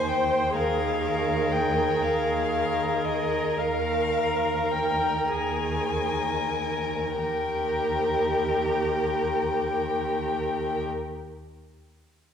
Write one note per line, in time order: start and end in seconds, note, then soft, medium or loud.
0.00 0.39 D#2 soft
0.00 0.54 C5 soft
0.00 0.56 C5 soft
0.08 0.56 G5 soft
0.56 1.85 D#2 soft
0.56 3.60 G#4 soft
0.56 1.03 A#4 soft
0.56 1.54 F5 medium
1.05 2.50 A#4 soft
1.52 2.04 G5 soft
2.02 3.39 D#2 soft
2.02 3.06 F5 soft
2.53 4.10 A#4 soft
3.04 3.59 D#5 soft
3.58 5.09 D#2 soft
3.58 5.30 A#4 soft
3.58 4.73 F5 soft
4.15 5.90 A#4 soft
4.72 5.30 G5 soft
5.28 6.98 D#2 soft
5.28 6.23 G#4 soft
5.28 7.17 G#5 soft
5.92 7.17 A#4 soft
7.18 10.84 D#2 soft
7.18 10.85 G4 soft
7.18 10.84 A#4 soft
7.18 10.84 G5 soft